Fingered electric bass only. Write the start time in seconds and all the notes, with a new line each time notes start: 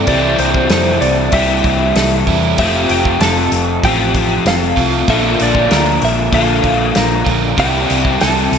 0.08 C2
0.39 C2
0.70 F2
1.01 C2
1.33 C2
1.65 C2
1.95 C2
2.27 E2
2.58 F1
2.90 F1
3.21 F1
3.52 F1
3.84 A1
4.45 F1
4.77 C2
5.08 A#1
5.41 A#1
5.71 D2
6.02 A#1
6.32 A#1
6.64 A#1
6.96 A#1
7.27 A#1
7.58 C2
7.90 C2
8.22 C2
8.52 C2